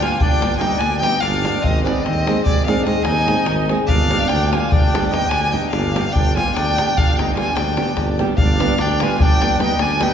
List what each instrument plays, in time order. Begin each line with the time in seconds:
0.01 nylon-string guitar G3 B3 D4 G4, accordion F4, violin G#5, davul high
0.20 tuba G1, accordion D4, violin G5, davul low
0.32 davul high
0.41 nylon-string guitar G3 B3 D4 G4, davul high
0.57 nylon-string guitar G3 B3 D4, accordion D#4 F4, violin G5 G#5
0.61 nylon-string guitar G4, davul high
0.76 accordion D4, violin G#5
0.80 tuba D2, davul high
1.00 nylon-string guitar G3 B3 D4 G4, accordion D#4, violin G5, davul high
1.19 accordion D4, violin F5, davul high
1.23 tuba G1
1.43 nylon-string guitar G3 B3 D4 G4, davul high
1.60 accordion C4, violin D#5
1.64 tuba G#1, davul low
1.83 nylon-string guitar G#3 C4 D#4 G#4, accordion B3, violin D5, davul high
1.97 davul high
2.03 accordion C4, violin D#5, davul high
2.08 tuba D#2
2.26 nylon-string guitar G#3 C4 D#4 G#4, davul high
2.45 tuba G#1, accordion G#3, violin D5, davul low
2.58 davul high
2.67 nylon-string guitar G#3 C4 D#4 G#4, accordion D4, violin F5, davul high
2.84 nylon-string guitar G#3 C4 D#4 G#4, accordion C4, violin D#5, davul high
3.03 tuba D#2, accordion D#4, violin G#5, davul high
3.26 nylon-string guitar G#3 C4 D#4 G#4, davul high
3.46 tuba G#1, davul high
3.69 nylon-string guitar G#3 C4 D#4 G#4, davul high
3.87 tuba G1, accordion D4, violin F5, davul low
4.11 nylon-string guitar G3 B3 D4 G4, davul high
4.21 davul high
4.28 tuba D2, accordion D4, violin G5, davul high
4.52 nylon-string guitar G3 B3 D4 G4, accordion F4, violin G#5, davul high
4.71 tuba G1, accordion D4, violin G5, davul low
4.84 davul high
4.93 nylon-string guitar G3 B3 D4 G4, davul high
5.09 nylon-string guitar G3 B3 D4 G4, accordion D#4, violin G5
5.14 davul high
5.29 tuba D2, accordion D4, violin G#5, davul high
5.51 nylon-string guitar G3 B3 D4 G4, accordion D#4, violin G5
5.70 tuba G1, accordion D4, violin F5, davul high
5.95 nylon-string guitar G3 B3 D4 G4, davul high
6.12 tuba G1, accordion D4, violin G5, davul low
6.27 davul high
6.34 nylon-string guitar G3 B3 D4 G4, accordion F4, violin G#5, davul high
6.54 accordion D4, violin G5, davul high
6.58 tuba D2
6.69 davul high
6.78 nylon-string guitar G3 B3 D4 G4, davul high
6.95 tuba G1, accordion D4, violin F5, davul low
7.17 nylon-string guitar G3 B3 D4 G4, accordion D#4, violin G5, davul high
7.34 nylon-string guitar G3 B3 D4 G4, accordion F4, violin G#5, davul high
7.47 davul high
7.54 tuba D2, accordion D4, violin G5, davul high
7.67 davul high
7.77 nylon-string guitar G3 B3 D4 G4, davul high
7.97 tuba G1, davul high, davul low
8.08 davul high
8.19 nylon-string guitar G3 B3 D4 G4, davul high
8.29 davul high
8.38 tuba G1, accordion D4, violin F5, davul low
8.59 nylon-string guitar G3 B3 D4 G4 B4, davul high
8.70 davul high
8.77 tuba D2, accordion D4, violin G5, davul high
9.00 nylon-string guitar G3 B3 D4 G4 B4, accordion F4, violin G#5, davul high
9.20 tuba G1, accordion D4, violin G5, davul low
9.31 davul high
9.40 nylon-string guitar G3 B3 D4 G4 B4, davul high
9.59 nylon-string guitar G3 B3 D4 G4 B4, accordion D#4, violin G5, davul high
9.78 tuba D2, accordion D4, violin G#5, davul high
10.00 nylon-string guitar G3 B3 D4 G4 B4, accordion D#4, violin G5, davul high